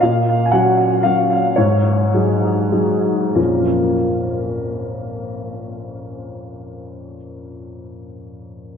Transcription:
0.01 0.51 A#2 soft
0.01 0.45 F5 medium
0.46 0.53 G#5 soft
0.51 1.00 F#3 soft
0.51 1.00 C#4 soft
0.51 1.00 F#4 soft
0.51 1.03 F#5 medium
1.03 1.54 F#3 soft
1.03 1.54 C#4 soft
1.03 1.54 F#4 soft
1.03 1.57 F5 medium
1.56 2.11 G#2 soft
1.56 2.71 C#5 medium
2.14 2.68 F#3 soft
2.14 2.68 D#4 soft
2.14 2.69 G#4 soft
2.72 3.32 F#3 soft
2.72 3.32 D#4 soft
2.72 3.32 G#4 soft
3.35 7.16 A#1 soft
3.35 7.16 F2 soft
3.35 7.16 F3 soft
3.35 7.17 A#3 soft
3.35 7.17 C#4 soft
3.35 7.17 F4 soft
3.35 7.16 A#4 soft

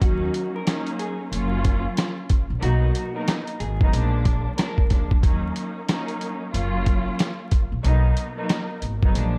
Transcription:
0.00 0.28 D#2 loud
0.00 0.62 F#3 loud
0.00 0.62 A#3 medium
0.00 0.62 C#4 medium
0.00 0.62 D#4 loud
0.00 0.52 F#4 medium
0.00 kick loud
0.00 closed hi-hat medium
0.34 closed hi-hat medium
0.56 0.66 A#4 medium
0.66 1.28 F#3 loud
0.66 1.28 A#3 medium
0.66 1.28 C#4 medium
0.66 1.28 D#4 loud
0.66 snare loud
0.66 closed hi-hat medium
0.87 closed hi-hat medium
0.99 1.18 G#4 medium
0.99 closed hi-hat medium
1.32 1.85 F#1 medium
1.32 2.39 F#3 loud
1.32 2.39 A#3 medium
1.32 2.39 C#4 loud
1.32 2.39 F4 loud
1.32 closed hi-hat medium
1.65 kick medium
1.65 closed hi-hat medium
1.97 snare loud
1.97 closed hi-hat loud
2.29 kick medium
2.29 closed hi-hat medium
2.50 2.60 A#1 medium
2.62 2.89 B1 loud
2.62 3.10 F#3 loud
2.62 3.10 A#3 medium
2.62 3.10 B3 medium
2.62 3.10 D#4 loud
2.62 3.12 F#4 loud
2.62 closed hi-hat medium
2.95 closed hi-hat medium
3.15 3.57 F#3 medium
3.15 3.57 A#3 loud
3.15 3.57 B3 medium
3.15 3.57 D#4 loud
3.15 3.27 A#4 medium
3.28 snare loud
3.28 closed hi-hat medium
3.47 closed hi-hat medium
3.60 3.87 G#1 loud
3.60 3.78 G#4 medium
3.60 closed hi-hat medium
3.81 3.98 F#3 medium
3.81 3.90 A#3 medium
3.81 3.98 B3 medium
3.81 3.98 D#4 loud
3.81 kick loud
3.91 4.46 A#1 loud
3.91 4.53 F3 loud
3.91 4.53 G#3 medium
3.91 4.53 A#3 loud
3.91 4.53 D4 loud
3.91 closed hi-hat medium
4.25 kick medium
4.25 closed hi-hat medium
4.58 4.88 F3 medium
4.58 4.88 G#3 medium
4.58 4.89 A#3 medium
4.58 4.89 D4 loud
4.58 4.87 A#4 medium
4.58 snare loud
4.58 closed hi-hat loud
4.78 kick medium
4.90 5.17 D2 medium
4.90 5.22 F3 medium
4.90 5.22 G#3 medium
4.90 5.20 A#3 medium
4.90 5.22 D4 medium
4.90 kick medium
4.90 snare soft
4.90 closed hi-hat medium
5.11 kick medium
5.21 5.50 D#2 loud
5.21 5.83 F#3 loud
5.21 5.83 A#3 medium
5.21 5.84 C#4 medium
5.21 5.84 D#4 loud
5.21 kick loud
5.21 closed hi-hat medium
5.56 closed hi-hat medium
5.88 6.50 F#3 medium
5.88 6.50 A#3 medium
5.88 6.50 C#4 medium
5.88 6.50 D#4 loud
5.88 snare loud
5.88 closed hi-hat loud
6.08 closed hi-hat medium
6.21 closed hi-hat medium
6.53 7.07 F#1 loud
6.53 7.60 F#3 loud
6.53 7.60 A#3 loud
6.53 7.61 C#4 medium
6.53 7.61 F4 loud
6.53 closed hi-hat medium
6.86 kick medium
6.86 closed hi-hat medium
7.19 snare loud
7.19 closed hi-hat loud
7.51 kick medium
7.51 closed hi-hat medium
7.72 7.82 A#1 medium
7.83 8.11 B1 loud
7.83 8.32 F#3 loud
7.83 8.32 A#3 medium
7.83 8.32 B3 medium
7.83 8.32 D#4 loud
7.83 closed hi-hat medium
8.17 closed hi-hat medium
8.37 8.79 F#3 medium
8.37 8.79 A#3 loud
8.37 8.79 B3 medium
8.37 8.79 D#4 loud
8.49 snare loud
8.49 closed hi-hat medium
8.82 9.08 G#1 loud
8.82 closed hi-hat medium
9.03 9.20 F#3 medium
9.03 9.12 A#3 medium
9.03 9.20 B3 medium
9.03 9.20 D#4 loud
9.03 kick loud
9.13 9.38 A#1 loud
9.13 9.38 F3 loud
9.13 9.38 G#3 medium
9.13 9.38 A#3 medium
9.13 9.38 D4 loud
9.13 closed hi-hat medium

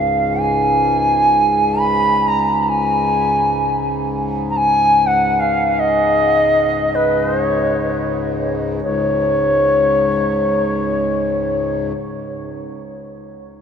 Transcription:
0.00 8.81 C#2 medium
0.00 8.80 G#2 medium
0.00 0.41 F5 medium
0.39 1.80 G#5 medium
1.79 2.29 B5 loud
2.28 2.62 A#5 medium
2.62 2.70 A#5 medium
2.68 3.88 G#5 medium
4.49 4.58 A#5 medium
4.56 5.08 G#5 loud
5.06 5.41 F#5 medium
5.39 5.81 F5 medium
5.79 6.96 D#5 loud
6.94 7.24 B4 medium
7.24 7.42 C5 medium
7.42 8.55 C#5 medium
8.82 11.93 C#2 medium
8.82 11.92 G#2 medium
8.82 11.87 C#5 medium

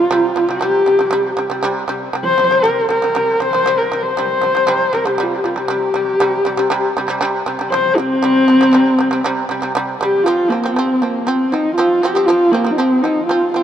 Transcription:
0.00 0.50 F4 medium
0.11 0.31 C3 loud
0.11 0.32 G3 loud
0.36 0.46 C3 medium
0.36 0.46 G3 medium
0.49 0.59 C3 medium
0.49 0.60 G3 medium
0.49 1.61 G4 medium
0.61 0.81 C3 medium
0.61 0.82 G3 medium
0.86 0.96 C3 medium
0.86 0.97 G3 medium
0.99 1.09 C3 medium
0.99 1.10 G3 medium
1.11 1.32 C3 loud
1.11 1.33 G3 loud
1.37 1.47 C3 medium
1.37 1.48 G3 medium
1.50 1.60 C3 medium
1.50 1.61 G3 medium
1.63 1.83 C3 medium
1.63 1.84 G3 loud
1.88 2.08 C3 medium
1.88 2.09 G3 medium
2.13 2.34 C3 medium
2.13 2.35 G3 medium
2.24 2.64 C5 loud
2.38 2.49 C3 medium
2.38 2.49 G3 medium
2.51 2.61 C3 medium
2.51 2.62 G3 medium
2.63 2.84 C3 medium
2.63 2.85 G3 medium
2.63 2.88 A#4 medium
2.89 2.99 C3 medium
2.89 3.00 G3 medium
2.89 3.41 A#4 medium
3.02 3.13 C3 medium
3.02 3.13 G3 medium
3.15 3.35 C3 medium
3.15 3.36 G3 medium
3.40 3.51 C3 medium
3.40 3.51 G3 medium
3.40 3.80 C5 loud
3.53 3.63 C3 medium
3.53 3.64 G3 medium
3.66 3.86 C3 medium
3.66 3.87 G3 medium
3.78 4.05 A#4 medium
3.92 4.12 C3 medium
3.92 4.13 G3 medium
4.03 4.95 C5 medium
4.17 4.37 C3 medium
4.17 4.38 G3 medium
4.41 4.52 C3 medium
4.41 4.53 G3 medium
4.55 4.65 C3 medium
4.55 4.66 G3 medium
4.67 4.87 C3 medium
4.67 4.88 G3 loud
4.93 5.03 C3 medium
4.93 5.04 G3 medium
4.93 5.07 A#4 medium
5.06 5.16 C3 medium
5.06 5.16 G3 medium
5.06 5.24 G4 medium
5.18 5.38 C3 medium
5.18 5.39 G3 medium
5.22 5.36 F4 medium
5.35 5.45 G4 medium
5.44 5.54 C3 medium
5.44 5.55 G3 medium
5.44 5.57 F4 medium
5.56 5.66 C3 medium
5.56 5.67 G3 medium
5.56 7.22 G4 medium
5.68 5.89 C3 medium
5.68 5.90 G3 medium
5.94 6.15 C3 medium
5.94 6.15 G3 medium
6.20 6.40 C3 loud
6.20 6.41 G3 loud
6.45 6.55 C3 medium
6.45 6.56 G3 medium
6.57 6.68 C3 medium
6.57 6.69 G3 medium
6.70 6.91 C3 medium
6.70 6.91 G3 loud
6.97 7.06 C3 medium
6.97 7.07 G3 medium
7.08 7.18 C3 medium
7.08 7.20 G3 medium
7.21 7.41 C3 medium
7.21 7.42 G3 loud
7.46 7.57 C3 medium
7.46 7.57 G3 medium
7.59 7.69 C3 medium
7.59 7.70 G3 medium
7.70 7.92 C3 medium
7.70 7.93 G3 medium
7.70 7.98 C5 medium
7.96 8.18 C3 medium
7.96 8.19 G3 medium
7.96 9.59 C4 loud
8.22 8.43 C3 medium
8.22 8.44 G3 medium
8.48 8.58 C3 medium
8.48 8.59 G3 medium
8.61 8.71 C3 medium
8.61 8.72 G3 medium
8.73 8.93 C3 medium
8.73 8.94 G3 medium
8.99 9.09 C3 medium
8.99 9.10 G3 medium
9.11 9.21 C3 medium
9.11 9.22 G3 medium
9.24 9.45 C3 medium
9.24 9.45 G3 loud
9.49 9.59 C3 medium
9.49 9.60 G3 medium
9.62 9.72 C3 medium
9.62 9.73 G3 medium
9.75 9.95 C3 loud
9.75 9.96 G3 loud
10.00 10.21 C3 medium
10.00 10.22 G3 medium
10.00 10.25 G4 medium
10.23 10.46 F3 medium
10.23 10.50 F4 medium
10.28 10.47 C4 loud
10.49 10.61 F3 medium
10.49 10.75 A#3 medium
10.49 10.62 C4 medium
10.64 10.74 F3 medium
10.64 10.75 C4 medium
10.73 10.97 F3 medium
10.73 11.03 C4 medium
10.79 10.98 C4 medium
11.01 11.22 F3 medium
11.01 11.28 A#3 medium
11.01 11.23 C4 medium
11.26 11.47 F3 medium
11.26 11.53 C4 medium
11.26 11.48 C4 medium
11.52 11.72 F3 medium
11.52 11.73 C4 medium
11.52 11.75 D#4 medium
11.76 11.98 F3 medium
11.76 11.99 C4 medium
11.76 12.03 F4 medium
12.02 12.13 F3 medium
12.02 12.14 C4 medium
12.02 12.27 G4 medium
12.15 12.25 F3 medium
12.15 12.26 C4 medium
12.26 12.48 F3 medium
12.26 12.53 F4 loud
12.30 12.49 C4 loud
12.52 12.63 F3 medium
12.52 12.72 A#3 medium
12.52 12.64 C4 medium
12.64 12.75 F3 medium
12.64 12.76 C4 medium
12.71 12.78 D#4 medium
12.77 12.99 F3 medium
12.77 13.03 C4 medium
12.77 12.99 C4 medium
13.02 13.24 F3 medium
13.02 13.25 C4 medium
13.02 13.26 D#4 medium
13.26 13.49 F3 medium
13.26 13.51 F4 medium
13.31 13.50 C4 medium
13.52 13.63 F3 medium
13.52 13.63 C4 medium
13.52 13.63 F4 medium

